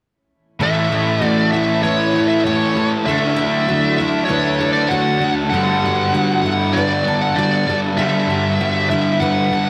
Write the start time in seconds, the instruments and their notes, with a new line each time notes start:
0.60 distorted electric guitar A2 E3 A3, clean electric guitar A2 E3 A3, twelve-string acoustic guitar A4, lead electric guitar E5
0.64 clean electric guitar E4
0.90 distorted electric guitar E3 A3, twelve-string acoustic guitar G4
1.22 distorted electric guitar A2 E3 A3, twelve-string acoustic guitar F#4
1.26 lead electric guitar D5
1.52 distorted electric guitar E3 A3, twelve-string acoustic guitar E4, lead electric guitar E5
1.83 distorted electric guitar A2 E3 A3, twelve-string acoustic guitar B4, lead electric guitar C#5
2.14 distorted electric guitar E3 A3, twelve-string acoustic guitar A4
2.28 lead electric guitar E5
2.44 distorted electric guitar A2 E3, twelve-string acoustic guitar G4, lead electric guitar C#5
2.48 distorted electric guitar A3
2.76 distorted electric guitar E3 A3, twelve-string acoustic guitar A4
3.06 distorted electric guitar D3 A3 D4, clean electric guitar F#3, twelve-string acoustic guitar A4, lead electric guitar E5
3.37 distorted electric guitar A3 D4, twelve-string acoustic guitar G5
3.68 distorted electric guitar D3 A3 D4, twelve-string acoustic guitar F#4
3.96 distorted electric guitar D4, twelve-string acoustic guitar E4, lead electric guitar E5
4.02 distorted electric guitar A3
4.25 distorted electric guitar D3, lead electric guitar C#5
4.29 distorted electric guitar A3 D4, twelve-string acoustic guitar B4
4.60 distorted electric guitar A3 D4, twelve-string acoustic guitar A4
4.73 lead electric guitar D5
4.89 distorted electric guitar D3 A3, twelve-string acoustic guitar F#4, lead electric guitar F#5
4.93 distorted electric guitar D4
5.20 distorted electric guitar A3 D4, twelve-string acoustic guitar A4
5.50 distorted electric guitar G2 D3, twelve-string acoustic guitar A4, lead electric guitar F#5
5.54 distorted electric guitar G3, clean electric guitar B3 D4 F#4
5.82 distorted electric guitar D3 G3, twelve-string acoustic guitar F#4
6.13 distorted electric guitar G2 D3 G3, twelve-string acoustic guitar F#4
6.42 distorted electric guitar G3, lead electric guitar F#5
6.46 distorted electric guitar D3, twelve-string acoustic guitar E4
6.73 distorted electric guitar G2 D3 G3, lead electric guitar D5
6.77 twelve-string acoustic guitar B4
7.05 distorted electric guitar D3 G3, twelve-string acoustic guitar A4
7.21 lead electric guitar F#5
7.35 distorted electric guitar G2 D3 G3, twelve-string acoustic guitar F#4, lead electric guitar D5
7.66 distorted electric guitar D3 G3, twelve-string acoustic guitar A4
7.97 distorted electric guitar G2 D3 G3, twelve-string acoustic guitar A4, lead electric guitar E5
8.27 distorted electric guitar D3 G3, twelve-string acoustic guitar F#4
8.59 distorted electric guitar G2 D3 G3, twelve-string acoustic guitar F#4
8.90 distorted electric guitar D3 G3, twelve-string acoustic guitar E4, lead electric guitar E5
9.20 distorted electric guitar G2 D3 G3, twelve-string acoustic guitar B4, lead electric guitar F#5
9.51 distorted electric guitar D3 G3, twelve-string acoustic guitar A4